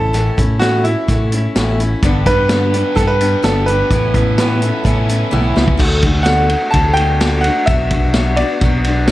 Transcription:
Already playing: fingered electric bass A1, steel-string acoustic guitar A3 C#4 E4, grand piano A4
0.13 steel-string acoustic guitar A2 E3 A3 C#4 E4, closed hi-hat
0.37 fingered electric bass A2, steel-string acoustic guitar A3 C#4 E4, kick, closed hi-hat
0.59 steel-string acoustic guitar A2 E3 A3 C#4 E4, grand piano F#4, snare, closed hi-hat
0.84 steel-string acoustic guitar A3 C#4 E4, grand piano E4, closed hi-hat
1.08 fingered electric bass A2, steel-string acoustic guitar E3 A3 C#4 E4, kick, closed hi-hat
1.32 steel-string acoustic guitar A3 C#4 E4, closed hi-hat
1.55 fingered electric bass A1, steel-string acoustic guitar A2 E3 A3 C#4 E4, snare, closed hi-hat
1.80 steel-string acoustic guitar A3 C#4 E4, closed hi-hat
2.02 fingered electric bass G1, steel-string acoustic guitar G2 D3 G3 B3 D4 G4, kick, closed hi-hat
2.26 fingered electric bass G2, steel-string acoustic guitar G3 B3 D4 G4, grand piano B4, kick, closed hi-hat
2.49 steel-string acoustic guitar G2 D3 G3 B3 D4 G4, snare, closed hi-hat
2.74 steel-string acoustic guitar G3 B3 D4 G4, closed hi-hat
2.95 fingered electric bass G2, steel-string acoustic guitar G3 B3 D4 G4, grand piano A4, kick, closed hi-hat
3.07 grand piano B4
3.21 steel-string acoustic guitar G3 B3 D4 G4, closed hi-hat
3.42 fingered electric bass G1, steel-string acoustic guitar G2 D3 G3 B3 D4 G4, grand piano A4, snare, closed hi-hat
3.66 steel-string acoustic guitar G3 B3 D4 G4, grand piano B4, closed hi-hat
3.91 fingered electric bass A1, steel-string acoustic guitar A2 E3 B3 C#4 E4, kick, closed hi-hat
4.14 fingered electric bass A2, overdriven electric guitar E3, steel-string acoustic guitar B3 C#4 E4, kick, closed hi-hat
4.38 steel-string acoustic guitar A2 E3 B3 C#4 E4, pedal steel guitar B4, snare, closed hi-hat
4.62 steel-string acoustic guitar B3 C#4 E4, pedal steel guitar A4, closed hi-hat
4.84 fingered electric bass A2, steel-string acoustic guitar E3 B3 C#4 E4, kick, closed hi-hat
5.08 overdriven electric guitar E3, steel-string acoustic guitar B3 C#4 E4, closed hi-hat
5.31 fingered electric bass B1, steel-string acoustic guitar A2 E3 B3 C#4 E4, pedal steel guitar E4, high tom
5.56 fingered electric bass C#2, steel-string acoustic guitar B3 C#4 E4, snare
5.68 kick
5.77 fingered electric bass D2, steel-string acoustic guitar D3 A3 D4 F#4, kick, crash
6.02 steel-string acoustic guitar A3 D4 F#4, kick, ride
6.23 steel-string acoustic guitar D3 A3 D4 F#4, grand piano F#5, snare, ride
6.50 steel-string acoustic guitar A3 D4 F#4, ride
6.71 fingered electric bass D2, steel-string acoustic guitar D3 A3 D4, grand piano A5, kick, ride
6.75 steel-string acoustic guitar F#4
6.94 steel-string acoustic guitar D4 F#4, grand piano G5, ride
6.98 steel-string acoustic guitar A3
7.20 steel-string acoustic guitar D3 A3 D4 F#4, snare, ride
7.41 steel-string acoustic guitar F#4, grand piano F#5, ride
7.46 steel-string acoustic guitar A3 D4
7.66 fingered electric bass B1, steel-string acoustic guitar B2 F#3 B3 F#4, grand piano E5, kick, ride
7.71 steel-string acoustic guitar D4
7.91 steel-string acoustic guitar B3 D4 F#4, kick, ride
8.14 steel-string acoustic guitar B2 F#3 B3 D4 F#4, snare, ride
8.36 steel-string acoustic guitar F#4, grand piano D5, ride
8.41 steel-string acoustic guitar B3 D4
8.61 fingered electric bass B1, steel-string acoustic guitar F#3 B3, kick, ride
8.65 steel-string acoustic guitar D4 F#4
8.84 steel-string acoustic guitar D4 F#4, ride
8.89 steel-string acoustic guitar B3
9.07 steel-string acoustic guitar B2 F#3 B3, snare, ride

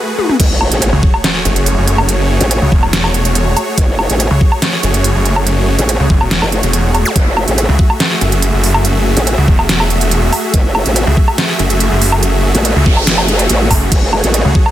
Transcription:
Already playing: supersaw synth A3 F#4 G#4 B4
0.19 high tom
0.29 mid tom
0.40 wobble bass F#1, supersaw synth A3 F#4 G#4 C#5, kick, closed hi-hat, crash, sub drop
0.61 low woodblock
0.72 wobble bass A1, closed hi-hat
0.82 closed hi-hat
0.93 detuned saw bass C#2
1.03 kick
1.14 low woodblock
1.24 snare, closed hi-hat
1.45 detuned saw bass F#1, closed hi-hat
1.56 closed hi-hat
1.66 closed hi-hat
1.77 detuned saw bass F#1
1.88 closed hi-hat
1.98 low woodblock
2.09 closed hi-hat
2.41 wobble bass A1, closed hi-hat
2.51 closed hi-hat
2.62 detuned saw bass C#2
2.72 detuned saw bass E1, kick
2.83 low woodblock
2.93 snare, closed hi-hat
3.04 low woodblock
3.14 closed hi-hat
3.25 closed hi-hat
3.35 closed hi-hat
3.57 closed hi-hat, low woodblock
3.78 wobble bass F#1, kick, closed hi-hat
3.99 low woodblock
4.10 wobble bass A1, closed hi-hat
4.20 closed hi-hat
4.31 detuned saw bass C#2
4.41 kick
4.52 low woodblock
4.62 snare, closed hi-hat
4.83 detuned saw bass F#1, closed hi-hat
4.94 closed hi-hat
5.04 closed hi-hat
5.15 detuned saw bass F#1
5.25 closed hi-hat
5.36 low woodblock
5.47 closed hi-hat
5.79 wobble bass A1, closed hi-hat
5.89 closed hi-hat
6.00 detuned saw bass C#2
6.10 detuned saw bass F#1, kick
6.21 detuned saw bass E1, low woodblock
6.31 snare, closed hi-hat
6.42 wobble bass F#1, low woodblock
6.52 closed hi-hat
6.63 detuned saw bass E1, closed hi-hat
6.73 closed hi-hat
6.95 closed hi-hat, low woodblock
7.05 zap
7.16 wobble bass F#1, supersaw synth E5, kick, closed hi-hat
7.37 low woodblock
7.48 wobble bass A1, closed hi-hat
7.58 closed hi-hat
7.69 detuned saw bass C#2
7.79 kick
7.90 low woodblock
8.00 snare, closed hi-hat
8.21 detuned saw bass F#1, closed hi-hat
8.32 closed hi-hat
8.42 closed hi-hat
8.53 detuned saw bass F#1
8.64 open hi-hat
8.74 low woodblock
8.85 closed hi-hat
9.17 wobble bass A1, closed hi-hat
9.27 closed hi-hat
9.38 detuned saw bass C#2
9.48 detuned saw bass E1, kick
9.59 low woodblock
9.69 snare, closed hi-hat
9.80 low woodblock
9.90 closed hi-hat
10.01 closed hi-hat
10.11 closed hi-hat
10.33 open hi-hat, low woodblock
10.54 wobble bass F#1, kick, closed hi-hat
10.75 low woodblock
10.86 wobble bass A1, closed hi-hat
10.96 closed hi-hat
11.07 detuned saw bass C#2
11.17 kick
11.28 low woodblock
11.38 snare, closed hi-hat
11.59 detuned saw bass F#1, closed hi-hat
11.70 closed hi-hat
11.80 closed hi-hat
11.91 detuned saw bass F#1
12.02 open hi-hat
12.12 low woodblock
12.23 closed hi-hat, noise sweep
12.55 wobble bass A1, closed hi-hat
12.65 closed hi-hat
12.76 detuned saw bass C#2
12.86 wobble bass F#1, kick
12.97 low woodblock
13.07 snare, closed hi-hat
13.18 low woodblock
13.28 closed hi-hat
13.39 closed hi-hat
13.49 wobble bass A1, closed hi-hat
13.71 detuned saw bass F#1, kick, open hi-hat, low woodblock
13.92 wobble bass F#1, supersaw synth C#5, kick, closed hi-hat, crash
14.13 low woodblock
14.24 wobble bass A1, closed hi-hat
14.34 closed hi-hat
14.45 detuned saw bass C#2
14.55 kick
14.66 low woodblock

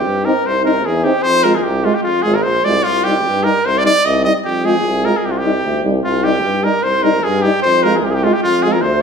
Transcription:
Already playing: trumpet G4
0.05 tuba G2
0.25 euphonium C4, french horn D#4, trumpet A#4
0.46 tuba C2, trumpet C5
0.65 euphonium C4, french horn D#4, trumpet A#4
0.85 tuba E2, trumpet G#4
1.04 euphonium C4, french horn D#4, trumpet G4
1.23 tuba F2, trumpet C5
1.44 euphonium G#3, french horn F4, trumpet A#4
1.55 trumpet G#4
1.63 tuba C2, trumpet G4
1.84 euphonium G#3, trumpet F4, french horn F4
1.95 trumpet G4
2.03 tuba F2, trumpet F4
2.22 tuba G#1, euphonium G#3, french horn F4, trumpet G#4
2.35 trumpet A#4
2.43 tuba A#1, trumpet C5
2.64 tuba C2, euphonium G#3, french horn F4, trumpet D5
2.84 tuba C2, trumpet F4
3.04 euphonium G3, french horn D#4, trumpet G4
3.26 tuba G2
3.44 euphonium G3, french horn D#4, trumpet A#4
3.64 tuba C2, trumpet C5
3.78 trumpet D5
3.84 euphonium G3, french horn D#4, trumpet D5
4.05 tuba C2, trumpet D#5
4.24 euphonium G3, french horn D#4, trumpet D#5
4.45 tuba F2, trumpet G4
4.65 euphonium G#3, french horn F4, trumpet G#4
4.85 tuba C2
5.05 euphonium G#3, french horn F4, trumpet A#4
5.17 trumpet G#4
5.24 tuba C2, trumpet G4
5.31 trumpet F4
5.38 trumpet G4
5.44 euphonium G3, french horn D#4
5.64 tuba D2
5.84 tuba C2, euphonium G3, french horn D#4
6.04 tuba C2, trumpet F4
6.24 euphonium G3, french horn D#4, trumpet G4
6.44 tuba G2
6.63 euphonium G3, french horn D#4, trumpet A#4
6.83 tuba C2, trumpet C5
7.03 euphonium G3, french horn D#4, trumpet A#4
7.24 tuba G2, trumpet G#4
7.42 euphonium G3, french horn D#4, trumpet G4
7.62 tuba F2, trumpet C5
7.83 euphonium G#3, french horn F4, trumpet A#4
7.95 trumpet G#4 A#4
8.04 tuba C2, trumpet G4
8.10 trumpet G#4
8.14 trumpet G4
8.24 euphonium G#3, trumpet F4, french horn F4
8.33 trumpet G4
8.43 tuba F2, trumpet F4
8.62 euphonium G#3, french horn F4, trumpet G#4
8.72 trumpet A#4
8.81 tuba D2, trumpet C5

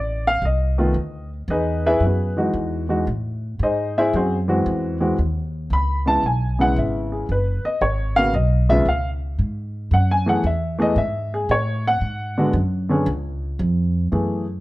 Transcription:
Already playing: upright bass A1, upright piano D5
0.27 upright piano F5
0.42 upright bass C2, upright piano D#5
0.78 upright piano D#3 A3 B3 F4
0.94 upright bass D2
1.48 upright bass E2, upright piano D#4 G#4 B4 D#5
1.86 upright piano E4 G#4 B4 E5
2.00 upright bass F#2
2.05 upright piano B3 F#4 G#4 B4
2.37 upright piano E3 G#3 D#4 F#4
2.54 upright bass E2
2.89 upright piano E3 G#3 D#4 F#4
3.07 upright bass A2
3.59 upright bass G#2, upright piano D#4 G#4 C5 D#5
3.98 upright piano E4 G#4 C5 E5
4.13 upright bass F#2, upright piano C4 F#4 G#4 C5
4.48 upright piano E3 G#3 C4 F#4
4.66 upright bass E2
5.00 upright piano E3 G#3 C4 F#4
5.18 upright bass D#2
5.70 upright bass C#2, upright piano B5
6.06 upright piano C#3 G#3 B3 E4 A5
6.23 upright bass B1, upright piano G#5
6.59 upright piano C#3 G#3 B3 E4 F#5
6.76 upright bass G#1, upright piano E5
7.12 upright piano G#4
7.29 upright bass F#1, upright piano B4
7.64 upright piano D#5, muted upright bass stroke
7.81 upright bass G#1, upright piano C#5
8.16 upright piano C#3 A#3 B3 F#4 F5
8.34 upright bass B1, upright piano D#5
8.69 upright piano C#3 G#3 B3 F4 E5
8.85 upright bass C#2, upright piano F5
9.39 upright bass G#2
9.91 upright bass F#2, upright piano F#5
10.11 upright piano G#5
10.26 upright piano E3 A3 B3 G#4 F#5
10.44 upright bass E2, upright piano E5
10.78 upright piano E3 A3 B3 G#4 D#5
10.96 upright bass G#2, upright piano E5
11.34 upright piano G#4
11.49 upright bass A2, upright piano C#5
11.87 upright piano F#5
12.01 upright bass G#2
12.37 upright piano D3 G#3 B3 F#4
12.53 upright bass F#2
12.89 upright piano D3 B3 C#4 G#4
13.06 upright bass C#2
13.59 upright bass F2
14.12 upright bass F#2, upright piano E3 A3 B3 G#4

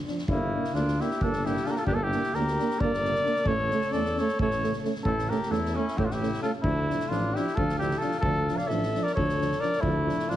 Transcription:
0.07 euphonium F3, trombone D4, snare
0.18 snare
0.27 tuba G1, alto saxophone A#3, trombone D4, cornet E4, kick
0.33 euphonium A#3
0.54 euphonium A#3, trombone D4
0.64 snare
0.74 tuba D2, euphonium A#3, alto saxophone D4, trombone D4, cornet F4, snare
0.88 snare
1.00 euphonium A#3, trombone D4, alto saxophone E4, cornet G4, snare
1.11 snare
1.21 tuba G1, euphonium A#3, alto saxophone D4, trombone D4, cornet A4, kick
1.33 snare
1.44 euphonium A#3, trombone D4, alto saxophone E4, cornet G4, snare
1.56 snare
1.64 trombone D4, alto saxophone F4, cornet A4, snare
1.69 euphonium A#3, alto saxophone G4, cornet A#4
1.75 alto saxophone F4, cornet A4, snare
1.85 tuba G1, trombone D4, alto saxophone D4, cornet G4, kick
1.90 euphonium A#3, alto saxophone F4
1.94 cornet A4
2.02 alto saxophone E4, cornet G4
2.11 euphonium A#3, trombone D4, snare
2.23 snare
2.33 tuba D2, trombone D4, alto saxophone G4, cornet A#4, snare
2.37 euphonium A#3
2.47 snare
2.58 euphonium A#3, trombone D4, snare
2.70 snare
2.79 tuba G1, euphonium A#3, trombone D4, alto saxophone A#4, cornet D5, kick
2.94 snare
3.02 trombone D4, snare
3.06 euphonium A#3
3.15 snare
3.23 euphonium A#3, trombone D4, snare
3.36 snare
3.44 tuba A1, euphonium A3, trombone C#4, alto saxophone A4, cornet C#5, kick
3.70 euphonium A3, trombone C#4, snare
3.81 snare
3.91 tuba E2, euphonium A3, trombone C#4, alto saxophone A4, cornet D5, snare
4.05 snare
4.16 euphonium A3, trombone C#4, alto saxophone A4, cornet C#5, snare
4.28 snare
4.39 tuba A1, euphonium A3, trombone C#4, alto saxophone A4, cornet C#5, kick
4.51 snare
4.63 euphonium A3, trombone C#4, snare
4.73 snare
4.83 euphonium A3, trombone C#4, snare
4.95 snare
5.04 tuba A1, euphonium A3, trombone C#4, alto saxophone E4, cornet A4, kick
5.18 snare
5.29 euphonium A3, trombone C#4, alto saxophone G4, cornet A#4, snare
5.43 snare
5.50 tuba E2, euphonium A3, trombone C#4, alto saxophone E4, cornet A4, snare
5.66 snare
5.75 euphonium A3, alto saxophone C#4, trombone C#4, cornet E4
5.88 snare
5.97 tuba A1, euphonium A3, trombone C#4, alto saxophone E4, cornet G4, kick
6.05 alto saxophone D4, cornet F4
6.11 alto saxophone E4, cornet G4, snare
6.20 euphonium A3, trombone C#4, snare
6.33 snare
6.41 euphonium A3, trombone C#4, alto saxophone F4, cornet A4, snare
6.62 tuba D2, euphonium F3, alto saxophone A3, trombone D4, cornet E4, kick
6.88 euphonium F3, trombone D4, snare
7.00 snare
7.09 tuba A1, euphonium F3, trombone D4, alto saxophone D4, cornet F4, snare
7.34 euphonium F3, trombone D4, alto saxophone E4, cornet G4, snare
7.47 snare
7.55 tuba D2, euphonium F3, trombone D4, alto saxophone F4, cornet A4, kick
7.69 snare
7.79 euphonium F3, trombone D4, alto saxophone E4, cornet G4, snare
7.91 snare
7.98 trombone D4, alto saxophone F4, cornet A4, snare
8.04 euphonium F3
8.11 snare
8.20 tuba D2, euphonium F3, trombone D4, alto saxophone F4, cornet A4, kick
8.48 euphonium F3, trombone D4, snare
8.57 alto saxophone D5, cornet F5, snare
8.67 tuba A1, euphonium F3, trombone D4, alto saxophone A4, cornet E5, snare
8.83 snare
8.95 euphonium F3, trombone D4, snare
9.03 alto saxophone A#4, cornet D5, snare
9.14 tuba D2, euphonium F3, trombone D4, alto saxophone A4, cornet C#5, kick
9.29 snare
9.39 euphonium F3, trombone D4, snare
9.51 snare
9.59 euphonium F3, trombone D4, alto saxophone A#4, cornet D5, snare
9.73 snare
9.81 tuba D2, euphonium F3, alto saxophone A3, trombone D4, cornet E4, kick
10.07 euphonium F3, trombone D4, snare
10.19 snare
10.29 tuba A1, euphonium F3, alto saxophone D4, trombone D4, cornet F4, snare

